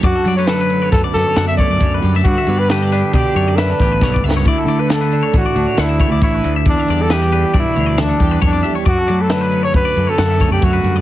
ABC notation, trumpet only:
X:1
M:5/4
L:1/16
Q:1/4=136
K:Bm
V:1 name="Trumpet"
F3 c B4 A2 A3 e d4 z2 | F3 B G4 G4 B6 z2 | E3 B A4 F4 E4 E3 z | D3 A G4 E4 D4 D3 z |
F3 A B3 c B3 A4 G F3 z |]